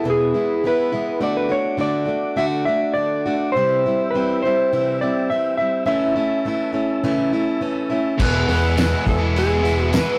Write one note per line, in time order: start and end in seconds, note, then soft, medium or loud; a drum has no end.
0.00 1.20 G#4 medium
0.00 1.20 B4 medium
0.00 1.20 E5 medium
0.00 1.19 B5 medium
0.04 0.34 E2 medium
0.04 0.34 B2 medium
0.04 0.34 E3 medium
0.04 0.34 G#3 medium
0.04 0.34 B3 medium
0.04 0.33 E4 medium
0.10 0.67 G#4 medium
0.34 0.63 E3 soft
0.34 0.64 G#3 soft
0.34 0.64 B3 medium
0.34 0.63 E4 soft
0.64 0.93 E3 medium
0.64 0.92 G#3 medium
0.64 0.92 B3 medium
0.64 0.91 E4 medium
0.64 1.19 B4 loud
0.92 1.20 E3 medium
0.92 1.20 G#3 soft
0.92 1.21 B3 medium
0.92 1.21 E4 medium
1.20 1.50 D3 medium
1.20 1.50 A3 medium
1.20 1.49 D4 medium
1.20 1.48 F#4 medium
1.20 3.50 A4 medium
1.20 3.50 D5 medium
1.20 1.36 D5 loud
1.20 3.51 F#5 medium
1.20 3.51 D6 medium
1.37 1.51 B4 medium
1.49 1.77 A3 soft
1.49 1.77 D4 medium
1.49 1.78 F#4 medium
1.49 1.80 C#5 medium
1.77 2.07 D3 medium
1.77 2.07 A3 medium
1.77 2.06 D4 medium
1.77 2.04 F#4 medium
1.77 2.37 D5 loud
2.06 2.36 A3 medium
2.06 2.36 D4 medium
2.06 2.36 F#4 medium
2.36 2.66 D3 medium
2.36 2.66 A3 medium
2.36 2.66 D4 medium
2.36 2.65 F#4 loud
2.36 2.45 E5 loud
2.65 2.95 A3 soft
2.65 2.96 D4 medium
2.65 2.95 F#4 medium
2.65 2.96 E5 loud
2.94 3.24 D3 medium
2.94 3.25 A3 medium
2.94 3.25 D4 medium
2.94 3.24 F#4 medium
2.94 3.35 D5 loud
3.26 3.55 A3 soft
3.26 3.55 D4 medium
3.26 3.54 F#4 medium
3.52 3.84 C3 medium
3.52 4.10 C5 loud
3.52 5.84 C5 medium
3.52 8.14 E5 medium
3.52 5.83 G5 medium
3.52 10.19 E6 medium
3.56 3.84 E3 medium
3.56 3.84 G3 medium
3.56 3.84 C4 medium
3.56 3.85 E4 medium
3.86 4.14 G3 soft
3.86 4.14 C4 soft
3.86 4.13 E4 medium
4.11 4.42 E3 medium
4.11 4.38 B4 medium
4.15 4.42 G3 medium
4.15 4.43 C4 medium
4.15 4.43 E4 medium
4.42 4.72 C4 medium
4.42 4.72 E4 medium
4.42 5.01 C5 loud
4.47 4.72 G3 medium
4.73 5.00 C3 medium
4.73 5.00 E3 medium
4.73 5.00 G3 medium
4.73 5.01 C4 medium
4.73 5.00 E4 medium
5.01 5.30 G3 soft
5.01 5.30 C4 soft
5.01 5.29 E4 medium
5.01 5.30 D5 loud
5.30 5.58 E3 medium
5.30 5.59 G3 medium
5.30 5.59 C4 medium
5.30 5.57 E4 medium
5.30 5.56 E5 loud
5.57 5.86 G3 soft
5.57 5.87 C4 soft
5.57 5.86 E4 medium
5.57 5.85 E5 medium
5.86 6.15 C#3 medium
5.86 6.15 E3 medium
5.86 6.15 A3 medium
5.86 6.16 C#4 medium
5.86 6.14 E4 medium
5.86 6.98 E5 loud
5.91 8.19 C#5 medium
5.91 8.19 A5 medium
6.16 6.45 A3 soft
6.16 6.45 C#4 medium
6.16 6.44 E4 medium
6.45 6.74 E3 medium
6.45 6.73 A3 medium
6.45 6.72 C#4 medium
6.45 6.71 E4 medium
6.73 7.03 A3 medium
6.73 7.02 C#4 medium
6.73 7.02 E4 medium
7.04 7.32 C#3 medium
7.04 7.32 E3 medium
7.04 7.32 A3 medium
7.04 7.32 C#4 loud
7.04 7.32 E4 loud
7.33 7.60 A3 soft
7.33 7.61 C#4 soft
7.33 7.61 E4 medium
7.61 7.90 E3 medium
7.61 7.90 A3 medium
7.61 7.90 C#4 medium
7.61 7.88 E4 medium
7.90 8.20 A3 medium
7.90 8.20 C#4 medium
7.90 8.19 E4 medium
8.18 8.42 E1 loud
8.18 8.62 E2 medium
8.18 8.48 E2 medium
8.18 8.62 B2 loud
8.18 8.48 B2 medium
8.18 8.34 E3 loud
8.18 8.48 E3 medium
8.18 8.33 G#3 loud
8.18 8.48 G#3 medium
8.18 8.33 B3 medium
8.18 8.48 B3 medium
8.18 8.32 E4 loud
8.18 8.47 G#4 medium
8.18 10.19 E5 medium
8.18 kick loud
8.18 crash loud
8.22 8.49 B4 loud
8.22 10.19 B4 medium
8.22 10.19 G#5 medium
8.33 8.45 E3 medium
8.33 8.46 G#3 medium
8.33 8.47 B3 medium
8.33 8.47 E4 medium
8.46 8.93 E2 loud
8.46 8.76 E3 medium
8.46 8.76 E3 soft
8.46 8.76 G#3 medium
8.46 8.77 G#3 soft
8.46 8.77 B3 medium
8.46 8.76 B3 medium
8.46 8.77 E4 medium
8.46 8.77 G#4 medium
8.46 open hi-hat medium
8.50 8.79 B4 medium
8.76 9.20 E2 medium
8.76 9.20 B2 medium
8.76 9.06 E3 medium
8.76 8.91 E3 loud
8.76 8.90 G#3 loud
8.76 9.06 G#3 medium
8.76 9.06 B3 medium
8.76 8.90 B3 loud
8.76 8.89 E4 loud
8.76 9.06 G#4 medium
8.76 9.08 B4 medium
8.76 snare loud
8.76 open hi-hat medium
8.76 tambourine medium
8.90 9.04 E3 medium
8.90 9.04 G#3 medium
8.90 9.05 B3 medium
8.90 9.05 E4 medium
9.05 9.96 E1 loud
9.05 9.36 E3 soft
9.05 9.36 G#3 medium
9.05 9.36 B3 medium
9.05 9.36 G#4 medium
9.05 9.37 A4 medium
9.05 muted overdriven electric guitar stroke soft
9.05 kick medium
9.05 open hi-hat medium
9.18 9.48 E3 medium
9.18 9.47 G#3 medium
9.18 9.47 B3 medium
9.18 9.46 E4 medium
9.36 9.65 E2 medium
9.36 9.65 B2 medium
9.36 9.64 E3 medium
9.36 9.63 G#3 medium
9.36 9.63 B3 medium
9.36 9.61 G#4 medium
9.36 9.83 G#4 medium
9.36 open hi-hat medium
9.47 9.60 E3 medium
9.47 9.61 G#3 medium
9.47 9.62 B3 medium
9.47 9.62 E4 medium
9.61 9.91 E3 medium
9.61 9.91 G#3 medium
9.61 9.93 G#3 soft
9.61 9.92 B3 medium
9.61 9.93 B3 medium
9.61 9.92 E4 medium
9.61 9.92 G#4 medium
9.65 9.92 E3 soft
9.65 open hi-hat medium
9.83 9.97 F#4 medium
9.91 10.19 E2 loud
9.91 10.19 B2 loud
9.91 10.18 E3 loud
9.91 10.19 E3 medium
9.91 10.19 G#3 loud
9.91 10.19 G#3 medium
9.91 10.19 B3 loud
9.91 10.19 E4 loud
9.91 10.19 G#4 medium
9.91 snare loud
9.91 open hi-hat medium
9.91 tambourine loud
9.95 10.19 B3 medium
9.95 10.19 B4 loud